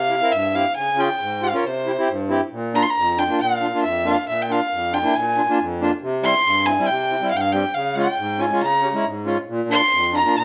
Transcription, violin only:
0.00 0.33 F5 medium
0.32 0.56 E5 medium
0.55 0.75 F5 medium
0.76 1.01 G#5 loud
1.00 1.45 G5 loud
1.43 1.57 F5 medium
1.58 1.68 C#5 soft
1.66 2.09 C5 medium
2.75 2.84 A#5 loud
2.82 2.92 C6 medium
2.90 3.20 A#5 loud
3.18 3.40 G5 medium
3.41 3.81 F5 medium
3.83 4.08 E5 medium
4.07 4.28 F5 medium
4.28 4.43 E5 medium
4.42 4.53 G5 medium
4.51 4.95 F5 medium
4.94 5.17 G5 medium
5.16 5.59 G#5 medium
6.24 6.68 C6 loud
6.66 6.88 G#5 medium
6.87 7.30 G5 medium
7.31 7.38 F5 medium
7.36 7.42 G5 medium
7.40 7.53 F5 medium
7.52 7.76 G5 medium
7.74 7.97 F5 medium
7.96 8.42 G5 medium
8.41 8.62 G#5 medium
8.63 9.03 A#5 medium
9.71 10.11 C6 loud
10.17 10.40 A#5 loud
10.38 10.44 G#5 medium

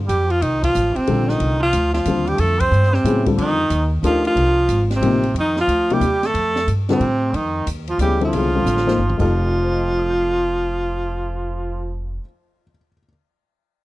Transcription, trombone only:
0.06 0.28 G3 medium
0.27 0.42 F3 medium
0.40 0.61 D#3 medium
0.61 0.95 F3 medium
0.93 1.28 C3 medium
1.27 1.59 D#3 medium
1.60 1.91 F3 medium
1.92 2.28 F3 medium
2.26 2.38 G3 medium
2.37 2.60 A3 medium
2.59 2.93 C4 medium
2.92 3.25 C3 medium
3.37 3.88 D#3 medium
4.03 4.23 F3 medium
4.26 4.87 F3 medium
4.95 5.34 C3 medium
5.38 5.56 D#3 medium
5.58 5.94 F3 medium
5.92 6.27 G3 medium
6.25 6.68 A3 medium
6.89 7.36 C3 medium
7.35 7.67 D#3 medium
7.89 7.99 F3 medium
8.00 8.19 G3 medium
8.22 9.16 F3 medium
9.20 12.05 F3 medium

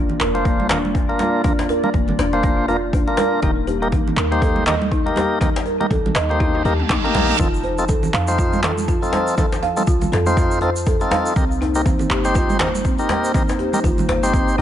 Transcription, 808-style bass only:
0.00 0.14 F1 medium
0.21 1.14 F1 medium
1.94 2.12 F1 medium
2.19 3.13 F1 medium
3.43 3.94 D#1 medium
3.92 4.11 A#1 medium
4.17 5.11 D#2 medium
5.91 6.09 A#1 medium
6.15 6.64 D#2 medium
6.65 6.83 D#2 loud
6.90 7.00 A#1 medium
7.15 7.33 A#1 medium
7.39 7.91 F1 medium
7.89 8.07 C2 medium
8.14 9.08 F2 medium
9.87 10.06 C2 medium
10.12 11.06 F2 loud
11.36 11.87 C2 medium
11.86 12.04 G1 medium
12.10 13.04 G1 loud
13.84 14.02 G1 medium
14.09 14.58 G1 medium
14.58 14.62 G1 loud

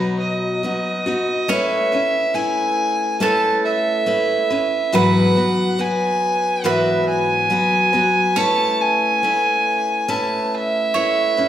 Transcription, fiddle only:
0.00 0.20 B4 medium
0.20 1.51 D#5 medium
1.49 2.36 E5 medium
2.35 3.20 G#5 medium
3.20 3.61 A5 medium
3.65 4.97 E5 medium
4.95 5.82 F#5 medium
5.81 6.69 G#5 medium
6.67 7.08 E5 medium
7.08 8.38 G#5 medium
8.37 8.82 A5 loud
8.81 10.11 G#5 loud
10.09 10.56 A5 medium
10.54 11.48 E5 medium

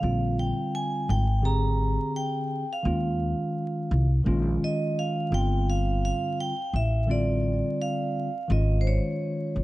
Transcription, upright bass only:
0.03 0.50 A#1 medium
1.09 1.96 G#1 medium
2.85 3.33 D#2 medium
3.91 4.21 C2 loud
4.26 4.56 A#1 loud
5.32 6.09 G1 medium
6.73 7.61 A1 medium
8.50 8.97 G#1 loud
9.56 9.64 A#1 medium

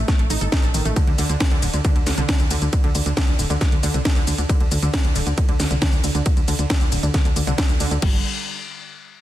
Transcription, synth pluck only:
0.08 0.14 A3 loud
0.19 0.23 A3 medium
0.30 0.33 D#4 medium
0.41 0.44 A4 medium
0.52 0.56 D#4 loud
0.63 0.66 A4 medium
0.74 0.80 D#3 medium
0.85 0.92 A3 medium
0.96 1.00 D3 medium
1.07 1.10 D3 medium
1.18 1.25 D3 loud
1.29 1.34 D3 medium
1.41 1.43 D3 medium
1.52 1.58 D3 loud
1.63 1.67 D3 medium
1.74 1.76 D3 medium
1.85 1.91 D3 loud
1.96 2.00 D3 medium
2.07 2.09 D3 medium
2.18 2.24 D3 loud
2.29 2.33 D3 medium
2.40 2.42 D3 medium
2.51 2.57 D3 loud
2.62 2.66 D3 medium
2.73 2.75 D3 medium
2.84 2.90 D3 loud
2.95 2.99 D3 medium
3.06 3.08 D3 medium
3.17 3.23 D3 loud
3.28 3.32 D3 medium
3.39 3.42 D3 medium
3.50 3.56 D3 loud
3.61 3.65 D3 medium
3.72 3.75 D3 medium
3.83 3.89 D3 loud
3.94 3.98 D3 medium
4.05 4.08 D3 medium
4.16 4.22 D3 loud
4.27 4.31 D3 medium
4.38 4.41 D3 medium
4.49 4.55 D3 loud
4.60 4.65 D3 medium
4.71 4.74 D3 medium
4.83 4.89 D3 loud
5.05 5.07 D3 medium
5.16 5.22 D3 loud
5.27 5.31 D3 medium
5.38 5.40 D3 medium
5.49 5.55 D3 loud
5.60 5.64 D3 medium
5.71 5.73 D3 medium
5.82 5.88 D3 loud
5.93 5.97 D3 medium
6.04 6.06 D3 medium
6.15 6.21 D3 loud
6.26 6.30 D3 medium
6.37 6.39 D3 medium
6.48 6.54 D3 loud
6.59 6.63 D3 medium
6.70 6.72 D3 medium
6.81 6.87 D3 loud
6.92 6.96 D3 medium
7.03 7.06 D3 medium
7.14 7.20 D3 loud
7.25 7.29 D3 medium
7.36 7.39 D3 medium
7.47 7.53 D3 loud
7.58 7.62 D3 medium
7.69 7.72 D3 medium
7.80 7.86 D3 loud
7.91 7.95 D3 medium
8.02 8.23 G3 medium

